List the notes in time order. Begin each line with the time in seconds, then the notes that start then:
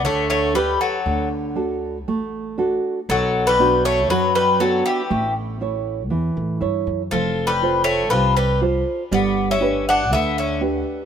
0.03 D2 D3 A3 C#5
0.30 A3 C#5
0.54 G3 G4 A4 B4
0.81 F#3 A4
1.06 D2 D3
1.55 D4 F#4 A4
2.07 A1 A3
2.58 D4 F#4 A4
3.09 B1 B2 F#3 A4
3.47 G3 B4
3.59 B3 D4 F#4
3.85 A3 C#5
4.10 F#2 F#3 B4
4.35 G3 B4
4.60 F#3 B3 D4 F#4 A4
4.86 E3 G4
5.10 A1 A3
5.61 E4 A4 C#5
6.10 E2 E3
6.37 A2
6.61 G2 E4 A4 C#5
6.87 F#2
7.11 F1 F3 A4
7.47 G3 B4
7.62 F4 A4 C5
7.84 A3 C#5
8.10 C2 C3 F3 B4
8.36 G3 B4
8.61 F4 A4 C5
9.11 G1 G3 B3 D5
9.51 C#4 E5
9.60 D4 G4 B4
9.89 D4 F#5
10.11 D2 D3 B3 E5
10.38 C#4 E5
10.61 D4 G4 B4